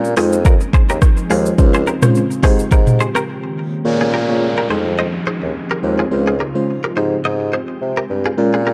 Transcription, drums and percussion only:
0, 0, Header, 1, 2, 480
1, 0, Start_track
1, 0, Key_signature, -4, "major"
1, 0, Tempo, 566038
1, 1343, Time_signature, 4, 2, 24, 8
1, 7407, End_track
2, 0, Start_track
2, 0, Title_t, "Drums"
2, 38, Note_on_c, 9, 82, 53
2, 123, Note_off_c, 9, 82, 0
2, 141, Note_on_c, 9, 46, 67
2, 141, Note_on_c, 9, 82, 49
2, 145, Note_on_c, 9, 37, 103
2, 226, Note_off_c, 9, 46, 0
2, 226, Note_off_c, 9, 82, 0
2, 229, Note_off_c, 9, 37, 0
2, 276, Note_on_c, 9, 82, 98
2, 360, Note_off_c, 9, 82, 0
2, 382, Note_on_c, 9, 36, 100
2, 382, Note_on_c, 9, 82, 80
2, 467, Note_off_c, 9, 36, 0
2, 467, Note_off_c, 9, 82, 0
2, 514, Note_on_c, 9, 82, 51
2, 599, Note_off_c, 9, 82, 0
2, 623, Note_on_c, 9, 36, 105
2, 626, Note_on_c, 9, 82, 61
2, 707, Note_off_c, 9, 36, 0
2, 711, Note_off_c, 9, 82, 0
2, 757, Note_on_c, 9, 82, 71
2, 842, Note_off_c, 9, 82, 0
2, 863, Note_on_c, 9, 36, 103
2, 863, Note_on_c, 9, 37, 103
2, 863, Note_on_c, 9, 82, 79
2, 948, Note_off_c, 9, 36, 0
2, 948, Note_off_c, 9, 37, 0
2, 948, Note_off_c, 9, 82, 0
2, 992, Note_on_c, 9, 82, 55
2, 1077, Note_off_c, 9, 82, 0
2, 1105, Note_on_c, 9, 46, 66
2, 1105, Note_on_c, 9, 82, 46
2, 1190, Note_off_c, 9, 46, 0
2, 1190, Note_off_c, 9, 82, 0
2, 1236, Note_on_c, 9, 82, 88
2, 1320, Note_off_c, 9, 82, 0
2, 1343, Note_on_c, 9, 82, 68
2, 1344, Note_on_c, 9, 36, 111
2, 1428, Note_off_c, 9, 36, 0
2, 1428, Note_off_c, 9, 82, 0
2, 1473, Note_on_c, 9, 82, 51
2, 1558, Note_off_c, 9, 82, 0
2, 1585, Note_on_c, 9, 82, 65
2, 1670, Note_off_c, 9, 82, 0
2, 1716, Note_on_c, 9, 45, 98
2, 1716, Note_on_c, 9, 82, 103
2, 1718, Note_on_c, 9, 37, 123
2, 1800, Note_off_c, 9, 82, 0
2, 1801, Note_off_c, 9, 45, 0
2, 1803, Note_off_c, 9, 37, 0
2, 1824, Note_on_c, 9, 82, 69
2, 1909, Note_off_c, 9, 82, 0
2, 1959, Note_on_c, 9, 82, 54
2, 2044, Note_off_c, 9, 82, 0
2, 2062, Note_on_c, 9, 36, 88
2, 2062, Note_on_c, 9, 46, 64
2, 2062, Note_on_c, 9, 82, 47
2, 2065, Note_on_c, 9, 37, 99
2, 2147, Note_off_c, 9, 36, 0
2, 2147, Note_off_c, 9, 46, 0
2, 2147, Note_off_c, 9, 82, 0
2, 2150, Note_off_c, 9, 37, 0
2, 2196, Note_on_c, 9, 82, 97
2, 2281, Note_off_c, 9, 82, 0
2, 2302, Note_on_c, 9, 36, 104
2, 2302, Note_on_c, 9, 82, 79
2, 2387, Note_off_c, 9, 36, 0
2, 2387, Note_off_c, 9, 82, 0
2, 2434, Note_on_c, 9, 45, 86
2, 2434, Note_on_c, 9, 82, 49
2, 2519, Note_off_c, 9, 45, 0
2, 2519, Note_off_c, 9, 82, 0
2, 2547, Note_on_c, 9, 82, 63
2, 2632, Note_off_c, 9, 82, 0
2, 2672, Note_on_c, 9, 37, 89
2, 2677, Note_on_c, 9, 82, 74
2, 2757, Note_off_c, 9, 37, 0
2, 2762, Note_off_c, 9, 82, 0
2, 7407, End_track
0, 0, End_of_file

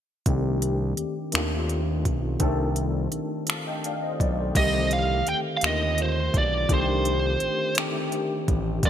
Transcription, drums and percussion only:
0, 0, Header, 1, 2, 480
1, 0, Start_track
1, 0, Tempo, 714286
1, 175, Time_signature, 6, 3, 24, 8
1, 5979, End_track
2, 0, Start_track
2, 0, Title_t, "Drums"
2, 174, Note_on_c, 9, 42, 61
2, 175, Note_on_c, 9, 36, 83
2, 242, Note_off_c, 9, 36, 0
2, 242, Note_off_c, 9, 42, 0
2, 417, Note_on_c, 9, 42, 42
2, 484, Note_off_c, 9, 42, 0
2, 654, Note_on_c, 9, 42, 35
2, 721, Note_off_c, 9, 42, 0
2, 889, Note_on_c, 9, 42, 56
2, 908, Note_on_c, 9, 26, 88
2, 956, Note_off_c, 9, 42, 0
2, 975, Note_off_c, 9, 26, 0
2, 1138, Note_on_c, 9, 42, 38
2, 1206, Note_off_c, 9, 42, 0
2, 1380, Note_on_c, 9, 36, 78
2, 1380, Note_on_c, 9, 42, 46
2, 1447, Note_off_c, 9, 36, 0
2, 1447, Note_off_c, 9, 42, 0
2, 1611, Note_on_c, 9, 42, 63
2, 1614, Note_on_c, 9, 36, 79
2, 1678, Note_off_c, 9, 42, 0
2, 1681, Note_off_c, 9, 36, 0
2, 1854, Note_on_c, 9, 42, 43
2, 1922, Note_off_c, 9, 42, 0
2, 2095, Note_on_c, 9, 42, 40
2, 2162, Note_off_c, 9, 42, 0
2, 2330, Note_on_c, 9, 42, 59
2, 2350, Note_on_c, 9, 26, 90
2, 2397, Note_off_c, 9, 42, 0
2, 2417, Note_off_c, 9, 26, 0
2, 2582, Note_on_c, 9, 42, 41
2, 2649, Note_off_c, 9, 42, 0
2, 2823, Note_on_c, 9, 36, 74
2, 2827, Note_on_c, 9, 42, 44
2, 2890, Note_off_c, 9, 36, 0
2, 2894, Note_off_c, 9, 42, 0
2, 3058, Note_on_c, 9, 36, 91
2, 3061, Note_on_c, 9, 42, 62
2, 3061, Note_on_c, 9, 49, 71
2, 3125, Note_off_c, 9, 36, 0
2, 3128, Note_off_c, 9, 42, 0
2, 3128, Note_off_c, 9, 49, 0
2, 3299, Note_on_c, 9, 42, 44
2, 3366, Note_off_c, 9, 42, 0
2, 3539, Note_on_c, 9, 42, 39
2, 3606, Note_off_c, 9, 42, 0
2, 3772, Note_on_c, 9, 42, 60
2, 3792, Note_on_c, 9, 26, 93
2, 3839, Note_off_c, 9, 42, 0
2, 3859, Note_off_c, 9, 26, 0
2, 4018, Note_on_c, 9, 42, 41
2, 4085, Note_off_c, 9, 42, 0
2, 4260, Note_on_c, 9, 36, 81
2, 4261, Note_on_c, 9, 42, 45
2, 4328, Note_off_c, 9, 36, 0
2, 4328, Note_off_c, 9, 42, 0
2, 4496, Note_on_c, 9, 36, 86
2, 4498, Note_on_c, 9, 42, 67
2, 4564, Note_off_c, 9, 36, 0
2, 4565, Note_off_c, 9, 42, 0
2, 4739, Note_on_c, 9, 42, 46
2, 4807, Note_off_c, 9, 42, 0
2, 4974, Note_on_c, 9, 42, 38
2, 5041, Note_off_c, 9, 42, 0
2, 5208, Note_on_c, 9, 42, 57
2, 5228, Note_on_c, 9, 26, 94
2, 5275, Note_off_c, 9, 42, 0
2, 5295, Note_off_c, 9, 26, 0
2, 5457, Note_on_c, 9, 42, 41
2, 5524, Note_off_c, 9, 42, 0
2, 5699, Note_on_c, 9, 42, 46
2, 5700, Note_on_c, 9, 36, 79
2, 5767, Note_off_c, 9, 36, 0
2, 5767, Note_off_c, 9, 42, 0
2, 5934, Note_on_c, 9, 36, 91
2, 5934, Note_on_c, 9, 42, 68
2, 5979, Note_off_c, 9, 36, 0
2, 5979, Note_off_c, 9, 42, 0
2, 5979, End_track
0, 0, End_of_file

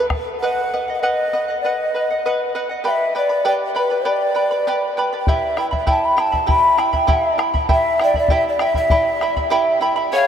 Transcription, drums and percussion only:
0, 0, Header, 1, 2, 480
1, 0, Start_track
1, 0, Tempo, 607287
1, 327, Time_signature, 2, 2, 24, 8
1, 8119, End_track
2, 0, Start_track
2, 0, Title_t, "Bombo"
2, 80, Note_on_c, 9, 37, 51
2, 80, Note_on_c, 9, 43, 53
2, 159, Note_off_c, 9, 37, 0
2, 159, Note_off_c, 9, 43, 0
2, 4165, Note_on_c, 9, 43, 72
2, 4244, Note_off_c, 9, 43, 0
2, 4403, Note_on_c, 9, 37, 45
2, 4483, Note_off_c, 9, 37, 0
2, 4526, Note_on_c, 9, 43, 45
2, 4605, Note_off_c, 9, 43, 0
2, 4640, Note_on_c, 9, 43, 56
2, 4719, Note_off_c, 9, 43, 0
2, 4885, Note_on_c, 9, 37, 49
2, 4964, Note_off_c, 9, 37, 0
2, 5006, Note_on_c, 9, 43, 43
2, 5085, Note_off_c, 9, 43, 0
2, 5127, Note_on_c, 9, 43, 65
2, 5206, Note_off_c, 9, 43, 0
2, 5363, Note_on_c, 9, 37, 47
2, 5442, Note_off_c, 9, 37, 0
2, 5479, Note_on_c, 9, 43, 44
2, 5558, Note_off_c, 9, 43, 0
2, 5598, Note_on_c, 9, 43, 68
2, 5678, Note_off_c, 9, 43, 0
2, 5842, Note_on_c, 9, 37, 60
2, 5921, Note_off_c, 9, 37, 0
2, 5962, Note_on_c, 9, 43, 60
2, 6041, Note_off_c, 9, 43, 0
2, 6078, Note_on_c, 9, 43, 67
2, 6157, Note_off_c, 9, 43, 0
2, 6320, Note_on_c, 9, 37, 54
2, 6399, Note_off_c, 9, 37, 0
2, 6434, Note_on_c, 9, 43, 49
2, 6514, Note_off_c, 9, 43, 0
2, 6548, Note_on_c, 9, 43, 65
2, 6627, Note_off_c, 9, 43, 0
2, 6793, Note_on_c, 9, 37, 51
2, 6872, Note_off_c, 9, 37, 0
2, 6911, Note_on_c, 9, 43, 50
2, 6991, Note_off_c, 9, 43, 0
2, 7034, Note_on_c, 9, 43, 68
2, 7113, Note_off_c, 9, 43, 0
2, 7282, Note_on_c, 9, 37, 46
2, 7361, Note_off_c, 9, 37, 0
2, 7402, Note_on_c, 9, 43, 44
2, 7481, Note_off_c, 9, 43, 0
2, 8119, End_track
0, 0, End_of_file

